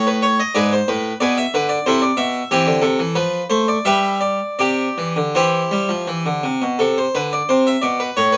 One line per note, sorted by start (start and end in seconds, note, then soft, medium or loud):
0.00 0.38 A2 medium
0.07 0.24 B4 medium
0.22 0.40 C#5 medium
0.40 0.56 D#5 medium
0.55 0.79 G#2 medium
0.55 0.71 G#4 medium
0.55 0.71 B4 medium
0.55 0.72 D5 loud
0.73 0.89 C5 medium
0.88 1.12 A2 medium
0.88 1.16 B4 medium
1.20 1.44 B2 medium
1.20 1.36 G#4 medium
1.20 1.36 B4 medium
1.20 1.37 D5 loud
1.38 1.53 E5 medium
1.54 1.77 D3 medium
1.54 1.70 B4 loud
1.69 1.85 D5 loud
1.86 2.10 C3 medium
1.86 2.02 E4 medium
1.86 2.02 A4 medium
1.86 2.02 C5 loud
2.02 2.18 D5 loud
2.17 2.41 B2 medium
2.17 2.50 E5 loud
2.51 2.66 E3 medium
2.51 2.82 C4 medium
2.51 2.82 E4 medium
2.51 2.84 G4 medium
2.67 2.82 D3 medium
2.82 2.98 C3 medium
2.82 3.16 A4 medium
2.99 3.16 E3 medium
3.15 3.41 F3 medium
3.15 3.45 B4 medium
3.50 3.76 A3 medium
3.50 3.68 C5 loud
3.68 3.86 D5 loud
3.85 4.39 G3 medium
3.85 4.20 G4 medium
3.85 4.20 B4 medium
3.85 4.17 E5 loud
4.21 4.58 D5 medium
4.59 4.87 C3 medium
4.59 5.31 G4 medium
4.59 5.23 D5 loud
4.98 5.15 E3 medium
5.16 5.34 D3 medium
5.35 5.61 E3 medium
5.35 6.41 E4 medium
5.35 6.42 G4 medium
5.35 6.45 C5 medium
5.71 5.89 G3 medium
5.89 6.07 F3 medium
6.07 6.25 E3 medium
6.26 6.44 D3 medium
6.43 6.61 C3 medium
6.62 6.79 B2 medium
6.79 7.05 C3 medium
6.79 6.97 A4 medium
6.98 7.15 C5 medium
7.15 7.40 D3 medium
7.15 7.32 B4 medium
7.33 7.50 D5 medium
7.49 7.74 C3 medium
7.49 7.67 C5 medium
7.67 7.84 E5 medium
7.82 8.08 B2 medium
7.82 8.00 D5 medium
8.00 8.17 B4 medium
8.17 8.37 A2 medium
8.17 8.34 C#5 medium
8.33 8.37 B4 medium